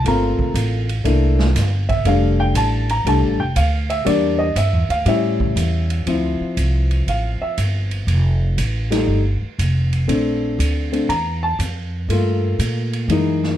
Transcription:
0.04 0.36 G1 medium
0.04 0.85 A3 soft
0.04 0.85 A#3 soft
0.04 0.86 C4 soft
0.04 0.86 F4 medium
0.04 0.53 A#5 medium
0.04 ride medium
0.39 muted upright bass stroke soft
0.39 kick medium
0.54 1.03 A1 loud
0.54 hi-hat pedal medium
0.54 ride medium
0.89 ride soft
1.04 1.54 C2 medium
1.04 1.43 A3 medium
1.04 1.43 A#3 soft
1.04 1.43 D4 soft
1.04 1.44 E4 medium
1.04 ride medium
1.39 snare medium
1.54 2.04 G1 medium
1.54 snare soft
1.54 hi-hat pedal medium
1.54 ride medium
1.89 2.05 E5 medium
1.89 kick medium
1.89 ride soft
2.05 2.54 F1 medium
2.05 2.85 G3 soft
2.05 2.86 A3 soft
2.05 2.86 D4 medium
2.05 2.39 F5 medium
2.05 ride medium
2.40 2.56 G5 medium
2.55 3.04 A1 medium
2.55 2.89 A5 medium
2.55 hi-hat pedal medium
2.55 ride medium
2.89 3.06 A#5 medium
2.89 ride medium
3.05 3.22 C2 medium
3.05 3.36 G3 soft
3.05 3.37 A3 soft
3.05 3.37 D4 medium
3.05 3.40 A5 medium
3.05 ride medium
3.22 3.38 A1 medium
3.39 3.55 F1 medium
3.39 3.56 G5 medium
3.56 4.05 D2 loud
3.56 3.89 F5 medium
3.56 hi-hat pedal medium
3.56 ride medium
3.90 4.06 E5 medium
3.90 ride medium
4.05 4.55 E2 medium
4.05 4.44 G3 medium
4.05 4.44 A#3 soft
4.05 4.44 D4 medium
4.05 4.39 D5 medium
4.05 ride medium
4.39 4.55 D#5 medium
4.56 4.72 G2 loud
4.56 4.90 E5 medium
4.56 hi-hat pedal medium
4.56 ride medium
4.72 4.88 E2 medium
4.89 5.05 D2 medium
4.89 5.06 F5 medium
4.89 ride medium
5.05 5.55 A2 medium
5.05 6.03 G3 medium
5.05 6.03 C#4 soft
5.05 6.03 E4 medium
5.05 6.54 E5 medium
5.05 ride medium
5.40 kick medium
5.56 6.05 E2 loud
5.56 hi-hat pedal medium
5.56 ride medium
5.90 ride medium
6.06 6.38 D2 medium
6.06 8.04 F3 soft
6.06 8.04 C4 soft
6.06 8.05 E4 medium
6.06 ride medium
6.40 muted upright bass stroke soft
6.57 7.06 C2 medium
6.57 hi-hat pedal medium
6.57 ride medium
6.91 ride soft
7.07 7.39 A1 medium
7.07 7.41 F5 medium
7.07 ride medium
7.42 7.58 E5 medium
7.42 muted upright bass stroke soft
7.58 8.07 G1 medium
7.58 hi-hat pedal medium
7.58 ride medium
7.91 ride soft
8.07 8.56 F1 medium
8.07 ride medium
8.58 9.07 A1 medium
8.58 hi-hat pedal soft
8.58 ride medium
8.91 9.20 G3 soft
8.91 9.20 A3 soft
8.91 9.20 D#4 medium
8.91 snare soft
8.91 ride medium
9.08 9.40 G1 medium
9.42 muted upright bass stroke soft
9.59 10.07 F1 medium
9.59 hi-hat pedal medium
9.59 ride medium
9.93 ride soft
10.08 10.57 A#1 medium
10.08 10.90 A3 soft
10.08 10.91 C4 soft
10.08 10.91 D4 medium
10.08 ride medium
10.59 11.07 D2 loud
10.59 hi-hat pedal medium
10.59 ride medium
10.92 11.07 A3 soft
10.92 11.07 C4 soft
10.92 11.07 D4 soft
10.92 ride soft
11.09 11.58 E2 medium
11.09 11.42 A#5 medium
11.09 ride medium
11.43 11.59 A5 medium
11.59 12.08 F2 medium
11.59 hi-hat pedal medium
11.59 ride medium
12.08 12.57 G2 medium
12.08 13.05 A3 soft
12.08 13.06 A#3 soft
12.08 13.06 F4 medium
12.08 ride medium
12.59 13.07 A#2 loud
12.59 hi-hat pedal medium
12.59 ride medium
12.93 ride soft
13.08 13.57 F#2 medium
13.08 13.57 E3 medium
13.08 13.57 G#3 soft
13.08 13.57 A#3 soft
13.08 13.57 D#4 medium
13.08 ride medium
13.44 snare soft

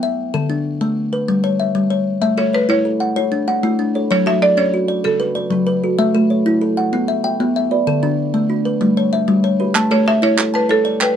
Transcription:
0.00 0.19 B3 medium
0.00 0.50 E5 medium
0.00 0.18 G5 medium
0.34 0.65 D3 medium
0.34 0.81 A4 medium
0.50 0.97 D4 medium
0.81 1.13 A3 medium
1.13 1.44 B4 medium
1.28 1.60 G3 medium
1.44 1.89 C#5 medium
1.60 2.07 E5 medium
1.75 2.07 G3 medium
1.90 2.38 C#5 medium
2.22 2.54 A3 medium
2.22 2.69 E5 medium
2.38 2.69 A3 medium
2.38 2.85 A4 medium
2.38 2.53 C#5 medium
2.53 2.70 B4 medium
2.53 3.01 C#5 medium
2.69 3.01 E4 medium
2.69 4.10 C#5 medium
2.85 3.17 A4 medium
3.00 3.47 F#5 medium
3.16 3.48 E4 medium
3.16 3.48 C#5 medium
3.32 3.78 D4 medium
3.48 3.95 D4 medium
3.48 3.95 F#5 medium
3.63 3.95 A3 medium
3.63 3.95 E4 medium
3.79 4.26 D4 medium
3.95 4.41 A4 medium
3.95 4.27 C#5 medium
4.11 4.42 F#3 medium
4.11 4.58 C#5 medium
4.11 4.27 C#5 loud
4.26 4.58 F#3 medium
4.26 4.73 F#4 medium
4.26 4.43 E5 medium
4.42 4.89 A4 medium
4.42 4.58 D5 loud
4.57 4.89 C#4 medium
4.57 5.01 C#5 medium
4.74 5.05 F#4 medium
4.88 5.34 D5 medium
5.04 5.36 C#3 medium
5.04 5.36 A4 medium
5.04 5.63 A4 medium
5.20 5.65 B4 medium
5.35 5.83 B4 medium
5.35 5.83 D5 medium
5.51 5.83 C#3 medium
5.51 5.83 F#3 medium
5.67 6.14 B4 medium
5.83 6.30 F#4 medium
5.83 6.15 A4 medium
5.99 6.30 A3 medium
5.99 6.46 E5 medium
6.15 6.46 A3 medium
6.15 6.62 A4 medium
6.30 6.77 C#5 medium
6.46 6.77 E4 medium
6.61 6.93 A4 medium
6.77 7.09 F#5 medium
6.93 7.24 B3 medium
6.93 7.09 E4 medium
7.08 7.55 E5 medium
7.24 7.71 E5 medium
7.24 7.71 G5 medium
7.40 7.71 B3 medium
7.56 8.03 E5 medium
7.71 8.18 B4 medium
7.71 8.03 D5 medium
7.87 8.18 D3 medium
7.87 8.34 A4 medium
8.03 8.34 D3 medium
8.03 8.50 D4 medium
8.34 8.65 A3 medium
8.50 8.81 D4 medium
8.65 8.97 B4 medium
8.81 9.12 G3 medium
8.81 8.97 A3 medium
8.97 9.43 C#5 medium
9.13 9.60 C#5 medium
9.13 9.60 E5 medium
9.28 9.59 G3 medium
9.44 9.91 C#5 medium
9.60 10.07 G4 medium
9.60 9.91 B4 medium
9.75 10.07 A3 medium
9.75 10.22 A5 medium
9.75 clap medium
9.91 10.22 A3 medium
9.91 10.38 A4 medium
9.91 10.07 C#5 medium
10.06 10.54 C#5 medium
10.06 10.23 E5 loud
10.22 10.54 E4 medium
10.22 10.55 C#5 loud
10.38 10.69 A4 medium
10.38 clap medium
10.54 10.71 B4 medium
10.54 11.01 A5 medium
10.69 11.01 E4 medium
10.69 11.02 A4 loud
10.69 11.01 C#5 medium
10.85 11.16 D5 medium
11.01 11.16 B4 medium
11.01 11.16 G5 medium
11.01 clap medium

